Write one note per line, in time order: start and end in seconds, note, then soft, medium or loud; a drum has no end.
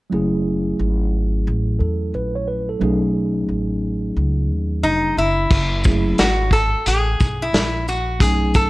0.10 0.76 F#1 medium
0.10 2.76 F#3 medium
0.10 2.77 A3 medium
0.10 2.77 C#4 medium
0.10 2.78 E4 medium
0.14 1.78 G#4 medium
0.79 1.43 G#1 medium
1.47 1.79 A1 medium
1.79 2.12 E2 medium
1.79 2.12 A4 soft
2.14 2.78 A#1 medium
2.14 2.35 B4 medium
2.35 2.47 C#5 medium
2.48 2.68 B4 medium
2.69 3.01 A4 medium
2.80 3.45 B1 medium
2.80 5.12 F#3 medium
2.80 5.13 A3 medium
2.80 5.13 C#4 medium
2.80 5.14 D#4 medium
2.80 5.14 G#4 medium
3.49 4.13 A1 medium
4.17 4.50 C#2 medium
4.50 4.82 D#2 medium
4.83 5.15 F1 medium
4.83 5.18 D#4 medium
5.17 5.49 F#1 medium
5.17 6.19 E4 medium
5.50 6.15 F#1 medium
5.50 kick loud
5.50 crash medium
5.84 6.27 F#3 medium
5.84 6.27 A3 medium
5.84 6.27 C#4 medium
5.84 6.28 E4 medium
5.84 6.28 G#4 medium
5.84 kick medium
5.84 shaker medium
6.18 6.71 G#1 medium
6.18 6.53 F#4 medium
6.18 snare medium
6.18 closed hi-hat medium
6.51 6.87 A4 medium
6.51 kick medium
6.51 closed hi-hat soft
6.51 shaker soft
6.74 muted upright bass stroke soft
6.86 7.18 A1 medium
6.86 7.43 G#4 loud
6.86 closed hi-hat medium
7.20 7.52 B1 medium
7.20 kick medium
7.20 shaker soft
7.42 7.88 E4 medium
7.53 8.17 A#1 medium
7.53 snare medium
7.53 closed hi-hat medium
7.88 8.22 F#4 medium
7.88 shaker soft
8.20 8.70 B1 loud
8.20 8.70 F#3 medium
8.20 8.70 A3 medium
8.20 8.70 C#4 medium
8.20 8.70 D#4 medium
8.20 8.52 G#4 loud
8.20 8.70 G#4 medium
8.20 kick loud
8.20 closed hi-hat medium
8.54 8.70 A4 medium
8.54 kick loud
8.54 closed hi-hat medium
8.54 shaker medium